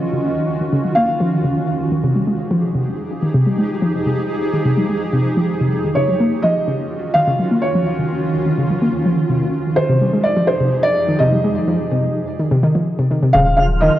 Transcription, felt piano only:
0.00 1.00 D#5 medium
0.95 1.63 F5 medium
5.95 6.45 C#5 medium
6.43 7.11 D#5 medium
7.14 7.64 F5 loud
7.62 8.30 C#5 medium
9.76 10.26 C5 loud
10.23 10.49 D5 medium
10.47 10.85 C5 medium
10.83 11.21 D5 loud
11.19 12.34 D#5 loud
13.33 13.55 F5 loud
13.57 13.62 F5 medium
13.81 13.99 D#5 medium

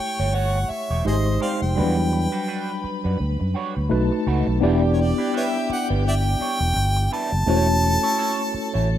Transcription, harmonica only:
0.00 0.36 G5 loud
0.35 0.72 F#5 medium
0.70 1.06 E5 medium
1.07 1.16 G#4 medium
1.07 1.15 C5 medium
1.07 1.39 D#5 medium
1.42 1.51 C5 medium
1.42 1.49 D5 medium
1.42 1.61 F5 medium
1.62 3.01 G5 medium
4.93 5.02 C#5 medium
5.01 5.35 D5 medium
5.37 5.45 B4 medium
5.37 5.43 C#5 medium
5.37 5.68 E5 medium
5.72 5.88 F#5 medium
6.08 6.15 D5 medium
6.08 6.15 E5 medium
6.08 7.09 G5 loud
7.13 8.98 A5 loud

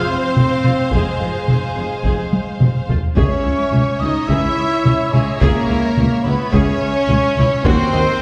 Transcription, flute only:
0.08 0.65 C6 medium
0.91 2.84 G#5 medium
3.16 4.01 C#6 medium
4.00 4.29 D#6 medium
4.27 5.14 E6 medium
5.12 5.38 G#5 medium
5.39 6.25 A#5 loud
6.24 6.51 B5 medium
6.52 7.66 C#6 loud
7.64 8.22 C6 loud

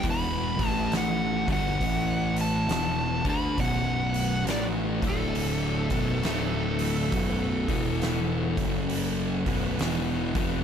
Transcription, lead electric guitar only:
0.11 0.69 B5 loud
0.69 0.92 A5 loud
0.97 1.47 F#5 medium
1.52 2.35 F#5 loud
2.41 3.23 A5 loud
3.29 3.58 B5 medium
3.61 4.44 F#5 loud
4.50 4.65 D5 medium
5.08 9.79 A4 medium

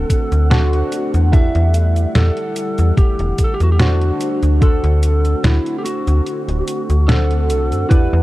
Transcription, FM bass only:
0.32 0.83 D2 medium
1.14 1.32 E2 medium
1.33 1.51 E2 soft
1.55 2.06 E2 loud
2.15 2.31 E2 medium
2.79 2.92 E2 medium
2.97 3.15 E1 soft
3.19 3.33 E1 loud
3.60 4.12 E2 medium
4.43 4.61 D2 medium
4.84 5.35 D2 loud
5.44 5.59 D2 medium
6.07 6.21 D2 medium
6.48 6.62 D1 loud
6.90 7.51 D2 medium
7.50 7.73 C2 medium
7.72 7.85 F#2 medium
7.91 8.08 E2 soft
8.13 8.23 E2 loud

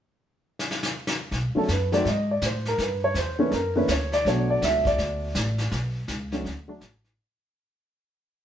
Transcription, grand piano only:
1.55 1.67 D3 medium
1.55 1.67 F#3 medium
1.55 1.68 A3 medium
1.55 1.68 C#4 medium
1.55 1.70 A4 medium
1.72 1.93 B4 medium
1.92 2.04 D#3 medium
1.92 2.04 F#3 medium
1.92 2.04 A3 medium
1.92 2.05 C4 medium
1.92 2.06 D5 medium
2.08 2.29 D#5 medium
2.31 2.43 D5 medium
2.46 2.66 C5 medium
2.68 2.80 A#4 medium
2.81 3.02 B4 medium
3.04 3.16 C#5 medium
3.18 3.39 C5 medium
3.39 3.51 D3 medium
3.39 3.51 E3 medium
3.39 3.51 A#3 medium
3.39 3.51 C#4 medium
3.39 3.53 B4 medium
3.49 3.52 A4 medium
3.54 3.75 A#4 medium
3.76 3.87 D3 medium
3.76 3.88 E3 medium
3.76 3.88 A#3 medium
3.76 3.88 C#4 medium
3.76 3.89 B4 medium
3.92 4.13 C#5 medium
4.14 4.26 D5 medium
4.27 5.28 F#3 medium
4.27 5.28 A3 medium
4.27 5.28 B3 medium
4.27 5.28 D4 medium
4.27 4.49 C#5 medium
4.50 4.62 D5 medium
4.64 4.86 E5 medium
4.87 5.68 D5 medium
6.32 6.44 D3 medium
6.32 6.44 F#3 medium
6.32 6.44 A3 medium
6.32 6.44 C#4 medium
6.68 6.80 D3 medium
6.68 6.80 F#3 medium
6.68 6.80 A3 medium
6.68 6.80 D4 medium

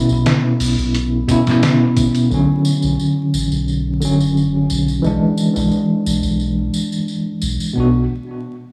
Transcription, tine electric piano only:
0.00 1.24 B2 medium
0.00 1.24 B3 medium
0.00 1.25 C#4 medium
0.00 1.26 E4 loud
1.27 2.26 B2 medium
1.27 2.27 B3 medium
1.27 2.27 C#4 medium
1.32 2.28 E4 medium
2.30 3.97 D3 medium
2.30 3.98 F#3 medium
2.34 3.99 C#4 medium
4.00 4.99 D3 medium
4.00 5.00 F#3 medium
4.05 5.01 C#4 medium
5.02 6.69 E3 medium
5.02 6.70 G#3 medium
5.07 6.71 D4 medium
7.73 8.00 B2 medium
7.73 8.01 B3 medium
7.77 8.02 D4 medium
7.77 8.04 F#4 medium

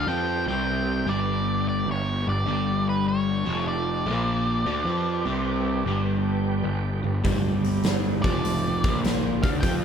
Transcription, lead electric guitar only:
0.08 0.44 G5 loud
0.49 1.09 G5 loud
1.09 1.67 D5 medium
1.69 1.88 D5 medium
1.91 2.29 C#5 medium
2.29 2.89 D5 medium
2.89 3.08 B4 medium
3.08 3.67 C#5 medium
3.68 6.02 D5 medium
8.22 8.99 D5 loud
9.43 9.48 F5 medium
9.61 9.72 G5 loud

